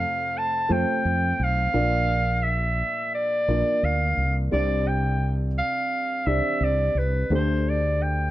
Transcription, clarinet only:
0, 0, Header, 1, 2, 480
1, 0, Start_track
1, 0, Key_signature, 0, "major"
1, 0, Tempo, 693642
1, 1209, Time_signature, 4, 2, 24, 8
1, 5748, End_track
2, 0, Start_track
2, 0, Title_t, "Clarinet"
2, 0, Program_c, 0, 71
2, 0, Note_on_c, 0, 77, 100
2, 262, Note_on_c, 0, 81, 98
2, 273, Note_off_c, 0, 77, 0
2, 499, Note_on_c, 0, 79, 103
2, 510, Note_off_c, 0, 81, 0
2, 994, Note_on_c, 0, 77, 105
2, 1005, Note_off_c, 0, 79, 0
2, 1679, Note_on_c, 0, 76, 92
2, 1690, Note_off_c, 0, 77, 0
2, 2163, Note_off_c, 0, 76, 0
2, 2177, Note_on_c, 0, 74, 92
2, 2662, Note_on_c, 0, 77, 92
2, 2673, Note_off_c, 0, 74, 0
2, 3018, Note_off_c, 0, 77, 0
2, 3135, Note_on_c, 0, 74, 89
2, 3376, Note_on_c, 0, 79, 86
2, 3386, Note_off_c, 0, 74, 0
2, 3670, Note_off_c, 0, 79, 0
2, 3862, Note_on_c, 0, 77, 93
2, 4336, Note_on_c, 0, 76, 87
2, 4347, Note_off_c, 0, 77, 0
2, 4594, Note_on_c, 0, 74, 82
2, 4604, Note_off_c, 0, 76, 0
2, 4830, Note_on_c, 0, 71, 79
2, 4841, Note_off_c, 0, 74, 0
2, 5063, Note_off_c, 0, 71, 0
2, 5087, Note_on_c, 0, 72, 84
2, 5324, Note_on_c, 0, 74, 80
2, 5334, Note_off_c, 0, 72, 0
2, 5553, Note_on_c, 0, 79, 80
2, 5564, Note_off_c, 0, 74, 0
2, 5748, Note_off_c, 0, 79, 0
2, 5748, End_track
0, 0, End_of_file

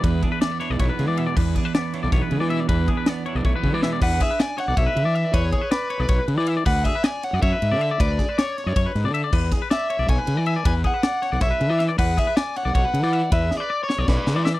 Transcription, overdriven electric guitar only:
0, 0, Header, 1, 2, 480
1, 0, Start_track
1, 0, Tempo, 379507
1, 48, Time_signature, 7, 3, 24, 8
1, 18462, End_track
2, 0, Start_track
2, 0, Title_t, "Overdriven electric guitar"
2, 0, Program_c, 0, 29
2, 5098, Note_on_c, 0, 78, 103
2, 5335, Note_off_c, 0, 78, 0
2, 5344, Note_on_c, 0, 76, 98
2, 5578, Note_off_c, 0, 76, 0
2, 5585, Note_on_c, 0, 80, 114
2, 5812, Note_off_c, 0, 80, 0
2, 5817, Note_on_c, 0, 78, 100
2, 6042, Note_off_c, 0, 78, 0
2, 6047, Note_on_c, 0, 76, 94
2, 6750, Note_on_c, 0, 73, 99
2, 6784, Note_off_c, 0, 76, 0
2, 7228, Note_off_c, 0, 73, 0
2, 7233, Note_on_c, 0, 71, 81
2, 7904, Note_off_c, 0, 71, 0
2, 8431, Note_on_c, 0, 78, 109
2, 8657, Note_off_c, 0, 78, 0
2, 8668, Note_on_c, 0, 76, 101
2, 8906, Note_off_c, 0, 76, 0
2, 8911, Note_on_c, 0, 80, 120
2, 9158, Note_off_c, 0, 80, 0
2, 9158, Note_on_c, 0, 78, 100
2, 9383, Note_off_c, 0, 78, 0
2, 9388, Note_on_c, 0, 76, 94
2, 10126, Note_on_c, 0, 74, 96
2, 10135, Note_off_c, 0, 76, 0
2, 10608, Note_off_c, 0, 74, 0
2, 10613, Note_on_c, 0, 73, 79
2, 11276, Note_off_c, 0, 73, 0
2, 12297, Note_on_c, 0, 76, 103
2, 12772, Note_off_c, 0, 76, 0
2, 12777, Note_on_c, 0, 80, 107
2, 13475, Note_off_c, 0, 80, 0
2, 13490, Note_on_c, 0, 80, 121
2, 13553, Note_off_c, 0, 80, 0
2, 13745, Note_on_c, 0, 78, 104
2, 14442, Note_off_c, 0, 78, 0
2, 14447, Note_on_c, 0, 76, 91
2, 14947, Note_off_c, 0, 76, 0
2, 15167, Note_on_c, 0, 78, 101
2, 15414, Note_off_c, 0, 78, 0
2, 15414, Note_on_c, 0, 76, 89
2, 15646, Note_off_c, 0, 76, 0
2, 15651, Note_on_c, 0, 80, 119
2, 15871, Note_off_c, 0, 80, 0
2, 15905, Note_on_c, 0, 78, 102
2, 16852, Note_off_c, 0, 78, 0
2, 16857, Note_on_c, 0, 76, 101
2, 17163, Note_off_c, 0, 76, 0
2, 17169, Note_on_c, 0, 74, 81
2, 17493, Note_off_c, 0, 74, 0
2, 17498, Note_on_c, 0, 73, 79
2, 17814, Note_off_c, 0, 73, 0
2, 17816, Note_on_c, 0, 71, 78
2, 17819, Note_on_c, 0, 74, 66
2, 18262, Note_off_c, 0, 71, 0
2, 18316, Note_off_c, 0, 74, 0
2, 18462, End_track
0, 0, End_of_file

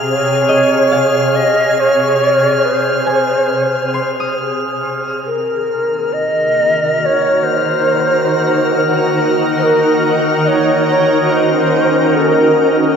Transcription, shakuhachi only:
0, 0, Header, 1, 2, 480
1, 0, Start_track
1, 0, Tempo, 855920
1, 34, Time_signature, 3, 2, 24, 8
1, 1474, Tempo, 874636
1, 3394, Tempo, 862069
1, 7201, End_track
2, 0, Start_track
2, 0, Title_t, "Shakuhachi"
2, 0, Program_c, 0, 77
2, 47, Note_on_c, 0, 73, 93
2, 760, Note_on_c, 0, 75, 98
2, 769, Note_off_c, 0, 73, 0
2, 1007, Note_on_c, 0, 73, 92
2, 1015, Note_off_c, 0, 75, 0
2, 1485, Note_on_c, 0, 72, 84
2, 1493, Note_off_c, 0, 73, 0
2, 2439, Note_off_c, 0, 72, 0
2, 2921, Note_on_c, 0, 70, 76
2, 3394, Note_on_c, 0, 75, 92
2, 3403, Note_off_c, 0, 70, 0
2, 3882, Note_off_c, 0, 75, 0
2, 3882, Note_on_c, 0, 75, 76
2, 3909, Note_on_c, 0, 73, 83
2, 3915, Note_off_c, 0, 75, 0
2, 4120, Note_on_c, 0, 72, 90
2, 4129, Note_off_c, 0, 73, 0
2, 5170, Note_off_c, 0, 72, 0
2, 5320, Note_on_c, 0, 72, 73
2, 5347, Note_on_c, 0, 70, 79
2, 5353, Note_off_c, 0, 72, 0
2, 5657, Note_off_c, 0, 70, 0
2, 5799, Note_on_c, 0, 75, 76
2, 5817, Note_on_c, 0, 73, 83
2, 5822, Note_off_c, 0, 75, 0
2, 6020, Note_off_c, 0, 73, 0
2, 6044, Note_on_c, 0, 73, 79
2, 6267, Note_off_c, 0, 73, 0
2, 6267, Note_on_c, 0, 73, 78
2, 6293, Note_on_c, 0, 72, 85
2, 6298, Note_off_c, 0, 73, 0
2, 6750, Note_on_c, 0, 69, 78
2, 6758, Note_off_c, 0, 72, 0
2, 6828, Note_off_c, 0, 69, 0
2, 6828, Note_on_c, 0, 70, 78
2, 7201, Note_off_c, 0, 70, 0
2, 7201, End_track
0, 0, End_of_file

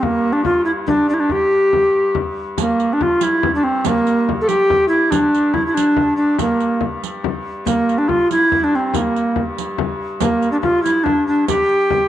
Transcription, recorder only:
0, 0, Header, 1, 2, 480
1, 0, Start_track
1, 0, Tempo, 424328
1, 33, Time_signature, 6, 3, 24, 8
1, 13667, End_track
2, 0, Start_track
2, 0, Title_t, "Recorder"
2, 0, Program_c, 0, 74
2, 34, Note_on_c, 0, 58, 75
2, 369, Note_on_c, 0, 62, 74
2, 386, Note_off_c, 0, 58, 0
2, 496, Note_off_c, 0, 62, 0
2, 503, Note_on_c, 0, 65, 85
2, 728, Note_off_c, 0, 65, 0
2, 735, Note_on_c, 0, 64, 93
2, 802, Note_off_c, 0, 64, 0
2, 983, Note_on_c, 0, 62, 87
2, 1211, Note_off_c, 0, 62, 0
2, 1237, Note_on_c, 0, 62, 82
2, 1288, Note_on_c, 0, 64, 64
2, 1305, Note_off_c, 0, 62, 0
2, 1356, Note_on_c, 0, 62, 92
2, 1373, Note_off_c, 0, 64, 0
2, 1492, Note_on_c, 0, 67, 92
2, 1509, Note_off_c, 0, 62, 0
2, 2443, Note_off_c, 0, 67, 0
2, 2950, Note_on_c, 0, 58, 80
2, 3318, Note_on_c, 0, 62, 80
2, 3335, Note_off_c, 0, 58, 0
2, 3420, Note_on_c, 0, 65, 85
2, 3437, Note_off_c, 0, 62, 0
2, 3654, Note_on_c, 0, 64, 89
2, 3671, Note_off_c, 0, 65, 0
2, 4004, Note_off_c, 0, 64, 0
2, 4016, Note_on_c, 0, 62, 89
2, 4114, Note_on_c, 0, 60, 83
2, 4131, Note_off_c, 0, 62, 0
2, 4354, Note_off_c, 0, 60, 0
2, 4378, Note_on_c, 0, 58, 88
2, 4869, Note_off_c, 0, 58, 0
2, 4991, Note_on_c, 0, 69, 76
2, 5068, Note_on_c, 0, 67, 107
2, 5085, Note_off_c, 0, 69, 0
2, 5518, Note_off_c, 0, 67, 0
2, 5525, Note_on_c, 0, 64, 90
2, 5779, Note_on_c, 0, 62, 95
2, 5796, Note_off_c, 0, 64, 0
2, 6263, Note_on_c, 0, 64, 91
2, 6280, Note_off_c, 0, 62, 0
2, 6404, Note_off_c, 0, 64, 0
2, 6411, Note_on_c, 0, 64, 74
2, 6500, Note_on_c, 0, 62, 93
2, 6517, Note_off_c, 0, 64, 0
2, 6968, Note_off_c, 0, 62, 0
2, 6975, Note_on_c, 0, 62, 82
2, 7207, Note_off_c, 0, 62, 0
2, 7248, Note_on_c, 0, 58, 77
2, 7744, Note_off_c, 0, 58, 0
2, 8661, Note_on_c, 0, 58, 83
2, 9029, Note_on_c, 0, 62, 84
2, 9046, Note_off_c, 0, 58, 0
2, 9143, Note_on_c, 0, 65, 100
2, 9160, Note_off_c, 0, 62, 0
2, 9389, Note_off_c, 0, 65, 0
2, 9405, Note_on_c, 0, 64, 103
2, 9772, Note_on_c, 0, 62, 91
2, 9789, Note_off_c, 0, 64, 0
2, 9902, Note_on_c, 0, 60, 79
2, 9919, Note_off_c, 0, 62, 0
2, 10034, Note_off_c, 0, 60, 0
2, 10034, Note_on_c, 0, 60, 63
2, 10138, Note_on_c, 0, 58, 79
2, 10155, Note_off_c, 0, 60, 0
2, 10667, Note_off_c, 0, 58, 0
2, 11547, Note_on_c, 0, 58, 87
2, 11886, Note_off_c, 0, 58, 0
2, 11897, Note_on_c, 0, 62, 85
2, 11955, Note_off_c, 0, 62, 0
2, 12019, Note_on_c, 0, 65, 91
2, 12242, Note_off_c, 0, 65, 0
2, 12249, Note_on_c, 0, 64, 101
2, 12485, Note_on_c, 0, 62, 97
2, 12502, Note_off_c, 0, 64, 0
2, 12740, Note_off_c, 0, 62, 0
2, 12755, Note_on_c, 0, 62, 85
2, 12978, Note_off_c, 0, 62, 0
2, 12987, Note_on_c, 0, 67, 100
2, 13667, Note_off_c, 0, 67, 0
2, 13667, End_track
0, 0, End_of_file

